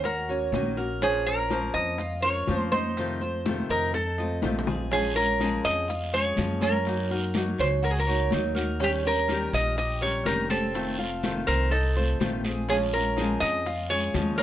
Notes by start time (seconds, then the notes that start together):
Already playing: D#2
0.04 F#4 A#4, muted nylon-string guitar stroke, high bongo, high conga, maracas
0.29 A#3 C#4 F#4 C#5, high bongo, high conga, maracas
0.52 A#1 D#3 A#3 C#4 F#4, high bongo, low bongo, high conga, maracas
0.77 A#3 C#4 F#4 A#4, high bongo, maracas
1.01 F3 A#3 C#4 F4 G#4 C5, high bongo, high conga, maracas
1.26 C#4 F4 A#4 C5, high conga, maracas
1.50 F3 A#3 C#4 F4 A#4 C5, high bongo, high conga, maracas
1.74 F2 D#5, high bongo, high conga, maracas
1.98 F4, muted nylon-string guitar stroke, high bongo, high conga, maracas
2.22 C#4 F4 A#4 C5 C#5, high bongo, high conga, maracas
2.47 F2 F3 A#3 C#4 F4 C5, high bongo, low bongo, high conga, maracas
2.56 C5
2.72 C#4 D#4 F4 C5, high bongo, high conga, maracas
2.97 C3 D#3 A3 C4 F4, high bongo, high conga, maracas
3.21 A3 C4 F4 C5, high conga, maracas
3.46 C3 D#3 A3 C4 F4, high bongo, high conga, maracas
3.69 F2 D#4 A#4, high bongo, maracas
3.94 A4, muted nylon-string guitar stroke, high bongo, high conga, maracas
4.18 A3 C4 F4 D#5, high bongo, high conga, maracas
4.42 A#1 C3 D#3 A3 C4 F4, high bongo, high conga, maracas
4.59 low conga
4.67 A3 C4 F4 G#4, low bongo, maracas
4.75 low conga
4.91 F3 G#3 C#4 F4 G#4, high bongo, high conga, long guiro, maracas
5.15 G#3 C#4 F4 A#4, high conga, maracas
5.39 F3 G#3 C#4 G#4, high bongo, high conga, short guiro, maracas
5.43 F4
5.64 F2 D#5, high conga, short guiro, maracas
5.88 F4, muted nylon-string guitar stroke, high bongo, high conga, long guiro, maracas
6.13 G#3 C#4 F4 G#4 C#5, high bongo, high conga, maracas
6.37 F#2 F3 G#3 C#4 F4, high bongo, low bongo, high conga, short guiro, maracas
6.61 G#3 C#4 F4 A#4, high conga, short guiro, maracas
6.85 F#3 A#3 D#4 F#4, high bongo, high conga, long guiro, maracas
7.11 A#3 D#4 F#4 A#4, high conga, maracas
7.34 F#3 A#3 D#4 F#4, high bongo, high conga, short guiro, maracas
7.58 C#2 C#4 C5, high bongo, short guiro, maracas
7.82 F#4 A#4, muted nylon-string guitar stroke, high bongo, high conga, long guiro, maracas
7.91 G#4
7.99 A#4
8.07 A#3 D#4 F#4 C#5, high bongo, high conga, maracas
8.31 D#2 F#3 A#3 D#4 F#4, high bongo, low bongo, high conga, short guiro, maracas
8.55 A#3 D#4 F#4 A#4, high conga, short guiro, maracas
8.80 D#3 G3 C#4 G4, high bongo, high conga, long guiro, maracas
8.84 G4
9.04 G3 C#4 G4 A#4, high conga, maracas
9.28 D#3 G3 C#4 G4 A#4, high bongo, high conga, short guiro, maracas
9.52 A#1 D#5, high bongo, high conga, short guiro, maracas
9.77 G4 D#5, muted nylon-string guitar stroke, high bongo, high conga, long guiro, maracas
10.01 G3 C#4 G4 A#4 C#5, high bongo, high conga, maracas
10.25 F1 D#3 G3 C#4 G4 A#4, high bongo, low bongo, high conga, short guiro, maracas
10.50 G3 C4 C#4 G4 A4, high bongo, high conga, short guiro, maracas
10.74 C3 D#3 A3 C4 F4, high bongo, long guiro, maracas
10.98 A3 C4 F4, high conga, maracas
11.23 C3 D#3 A3 C4 F4, high bongo, high conga, short guiro, maracas
11.47 C2 C4 A#4, high bongo, short guiro, maracas
11.71 D#4 A4, muted nylon-string guitar stroke, high bongo, high conga, long guiro, maracas
11.96 A3 C4 F4 C5, high bongo, high conga, maracas
12.20 A#1 C3 D#3 A3 C4 F4, high bongo, low bongo, high conga, short guiro, maracas
12.44 A3 C4 F4 G#4, high bongo, high conga, short guiro, maracas
12.69 F3 G#3 C#4 F4 G#4, high bongo, high conga, long guiro, maracas
12.93 G#3 C#4 F4 A#4, high conga, maracas
13.17 F3 G#3 C#4 F4 G#4, high bongo, high conga, short guiro, maracas
13.40 F2 D#5, high bongo, high conga, short guiro, maracas
13.66 F4, muted nylon-string guitar stroke, high bongo, high conga, long guiro, maracas
13.90 G#3 C#4 F4 G#4 C#5, high bongo, high conga, maracas
14.14 D#2 F3 G#3 C#4 F4, high bongo, low bongo, high conga, short guiro, maracas
14.38 C#4 A#4, high bongo, short guiro, maracas